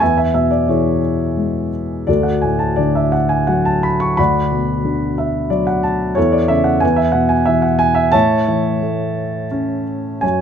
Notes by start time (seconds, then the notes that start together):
0.00 E2 B4 E5 G#5
0.18 E5
0.34 B2 E5
0.51 D5
0.68 E3 E4 G#4 C#5
1.37 G#3
2.07 D2 F#4 A4 D5
2.23 F#5
2.42 A2 G#5
2.59 A5
2.76 D3 D5
2.95 E5
3.12 F#5
3.29 G#5
3.47 F#3 F#5
3.65 A5
3.83 B5
4.00 C#6
4.17 D2 D5 F#5 B5
4.52 B2
4.85 D3
5.18 E5
5.50 F#3 D5
5.67 F#5
5.83 A5
6.15 E2 E4 A4 C#5
6.32 D5
6.48 C#3 E5
6.64 F#5
6.80 E2 B4 G#5
6.96 E5
7.12 B2 F#5
7.29 G#5
7.46 E3 E5
7.62 F#5
7.79 G#5
7.95 E5
8.12 A2 C#5 E5 A5
8.48 E3
8.81 A3
9.51 C#4
10.21 F#2 C#5 G#5